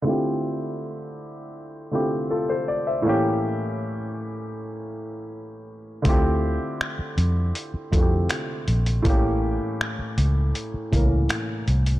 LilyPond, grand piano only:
\new Staff \with { instrumentName = "Grand piano" } { \time 4/4 \key d \minor \tempo 4 = 80 << { r2. <f' a'>16 <a' c''>16 d''16 <c'' e''>16~ | <c'' e''>16 r2. r8. | r1 | r1 | } \\ { <d a c' e' f' g'>2~ <d a c' e' f' g'>8 <d a c' e' f' g'>4. | <a, e bes cis' g'>1 | <d a c' e' f' g'>2~ <d a c' e' f' g'>8 <d a c' e' f' fis' g'>4. | <a, e bes cis' g'>2~ <a, e bes cis' g'>8 <a, e bes cis' bes'>4. | } >> }